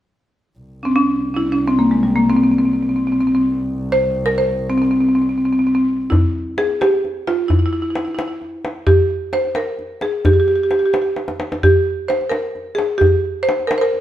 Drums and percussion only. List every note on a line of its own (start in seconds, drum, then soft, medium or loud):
6.12 tombak dum medium
6.58 tombak tek medium
6.70 tombak ka soft
6.82 tombak tek medium
7.05 tombak ka soft
7.28 tombak tek medium
7.50 tombak dum medium
7.95 tombak tek medium
8.08 tombak ka soft
8.19 tombak tek medium
8.42 tombak ka soft
8.65 tombak tek medium
8.87 tombak dum medium
9.33 tombak tek medium
9.44 tombak ka soft
9.55 tombak tek medium
9.79 tombak ka soft
10.01 tombak tek medium
10.25 tombak dum medium
10.48 tombak ka soft
10.71 tombak tek medium
10.83 tombak ka soft
10.94 tombak tek medium
11.16 tombak tek soft
11.28 tombak ka medium
11.40 tombak tek medium
11.52 tombak ka medium
11.63 tombak dum medium
12.10 tombak tek medium
12.21 tombak ka soft
12.31 tombak tek medium
12.55 tombak ka soft
12.78 tombak tek medium
13.01 tombak dum medium
13.49 tombak tek medium
13.60 tombak ka soft
13.71 tombak tek medium
13.93 tombak ka soft